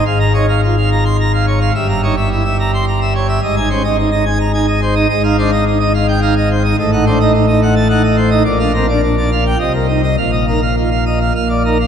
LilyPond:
<<
  \new Staff \with { instrumentName = "Pipe organ" } { \time 3/4 \key aes \major \tempo 4 = 107 << { f''16 bes''16 des''16 f''16 f'16 f''16 bes''16 c'''16 bes''16 f''16 des''16 f''16 | e''16 bes''16 des''16 e''16 e'16 e''16 bes''16 c'''16 bes''16 e''16 des''16 e''16 | ees''16 aes''16 c''16 ees''16 ees'16 ees''16 aes''16 bes''16 aes''16 ees''16 c''16 ees''16 | \key bes \mixolydian ees''16 f''16 c''16 ees''16 ees'16 ees''16 f''16 g''16 f''16 ees''16 c''16 ees''16 |
ees''16 fis''16 c''16 ees''16 ees'16 ees''16 fis''16 a''16 fis''16 ees''16 c''16 ees''16 | d''16 f''16 bes'16 d''16 d'16 d''16 f''16 g''16 ees''16 bes'16 ees'16 ees''16 | f''16 ees''16 bes'16 f''16 f'16 f''16 ees''16 f''16 f''16 d''16 bes'16 f''16 | } \\ { aes,8 ees'16 r2 r16 | g,8 ees'16 r2 r16 | aes,16 ees'16 des'16 ees'16 r16 ees'16 r8 ees'16 r8 ees'16 | aes,16 ees'16 d'16 ees'16 r16 ees'16 r8 ees'16 r8 ees'16 |
a,16 ees'16 d'16 ees'16 r16 ees'16 r8 ees'16 r8 ees'16 | bes,16 d'16 c'16 d'16 r16 d'16 r8 c4 | bes,8 ees'16 r4 r16 bes,8 ees'16 r16 | } >> }
  \new Staff \with { instrumentName = "Pipe organ" } { \clef bass \time 3/4 \key aes \major aes,,2. | g,,2. | aes,,2. | \key bes \mixolydian aes,,2. |
a,,2. | bes,,2 c,4 | bes,,2 bes,,4 | }
>>